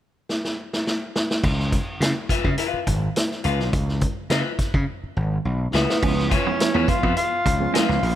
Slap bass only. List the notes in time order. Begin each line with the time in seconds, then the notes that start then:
1.43 C#2
2.00 C#3
2.29 muted slap bass stroke
2.44 C#3
2.74 muted slap bass stroke
2.87 G#1
3.45 C#2
3.60 B1
3.73 C#2
4.30 C#3
4.59 muted slap bass stroke
4.74 C#3
5.04 muted slap bass stroke
5.17 G#1
5.45 B1
5.74 C#2
6.02 C#2
6.75 E2
7.03 F2
7.46 C#2
7.89 C#2
8.02 A#1